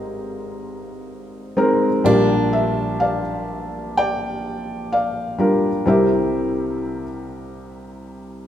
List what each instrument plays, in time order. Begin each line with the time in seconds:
Already playing: felt piano G#1 G#2 G#3 C4 D#4 A#4 C5 D#5 F5, steel-string acoustic guitar G4 A#4
1.57 felt piano G#3 C4 D#4 A#4
2.04 felt piano A#1 A#2 G3 D4 F4 G4 A#4 D5, steel-string acoustic guitar D4
2.53 felt piano E5
3.00 felt piano D5 F5
3.97 felt piano D5 G5
4.92 felt piano D5 F5
5.38 felt piano G3 D4 F4 A#4
5.86 felt piano C2 C3 G3 C4 E4 G4 A#4 E5